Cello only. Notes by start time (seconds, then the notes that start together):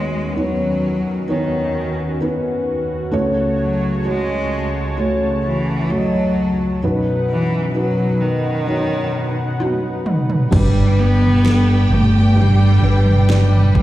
Already playing: G#3
0.37 F#3
1.30 D#3
3.59 F#3
4.07 G#3
5.45 E3
5.91 F#3
7.30 E3
7.75 F#3
8.20 D#3
10.53 G3
11.00 B3
11.92 A3
12.39 G3
13.31 G3
13.37 F#3
13.46 G3